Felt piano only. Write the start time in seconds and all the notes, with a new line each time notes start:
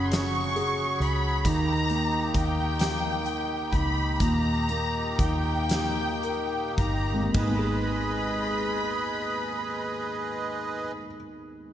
Already playing: C#3 C#4 G#4 C#5
0.12 C#5
0.56 G#4
1.01 C#5
1.45 D#3
1.90 A#3
2.36 D#4
2.80 G4
3.74 D#4
4.20 A#2
4.69 A#3
5.20 D#4
5.71 G4
6.24 A#4
6.80 D#4
7.13 G#1
7.23 D#2
7.32 D#3
7.40 G#3
7.49 B3
7.58 G#4